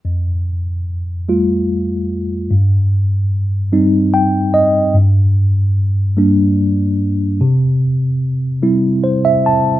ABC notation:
X:1
M:6/8
L:1/16
Q:3/8=49
K:F
V:1 name="Tine electric piano"
z12 | z8 g2 _e2 | z12 | z8 c e a2 |]
V:2 name="Tine electric piano" clef=bass
F,,6 [G,A,F]6 | G,,6 [G,C_E]6 | G,,6 [G,B,D]6 | C,6 [G,CE]6 |]